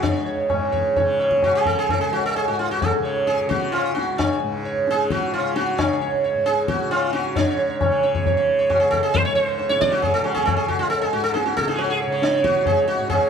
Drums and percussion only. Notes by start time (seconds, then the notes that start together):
0.03 tabla tin, tabla ge
0.50 tabla na, tabla ge
0.73 tabla ge
0.96 tabla tin, tabla ge
1.20 tabla na
1.31 tabla ke
1.42 tabla na, tabla ge
1.66 tabla ge
1.89 tabla tin, tabla ge
2.12 tabla na
2.35 tabla na
2.82 tabla tin, tabla ge
3.27 tabla te
3.51 tabla ke
3.74 tabla na
3.97 tabla te
4.19 tabla na, tabla ge
4.88 tabla te
5.10 tabla ke
5.33 tabla na
5.56 tabla te
5.79 tabla na, tabla ge
6.46 tabla te
6.68 tabla ke
6.91 tabla na
7.14 tabla te
7.36 tabla tin, tabla ge
7.81 tabla na, tabla ge
8.04 tabla te
8.15 tabla ge
8.26 tabla tin, tabla ge
8.70 tabla na, tabla ge
8.93 tabla ge
9.15 tabla tin, tabla ge
9.59 tabla te
9.70 tabla te
9.82 tabla ke
9.92 tabla te
10.03 tabla tin, tabla ge
10.26 tabla na
10.37 tabla ke
10.48 tabla na, tabla ge
10.70 tabla ge
10.92 tabla tin
11.36 tabla te
11.47 tabla te
11.57 tabla ke
11.68 tabla te
11.78 tabla tin
12.22 tabla te
12.33 tabla te
12.45 tabla ke
12.55 tabla te
12.66 tabla tin, tabla ge
13.10 tabla na, tabla ge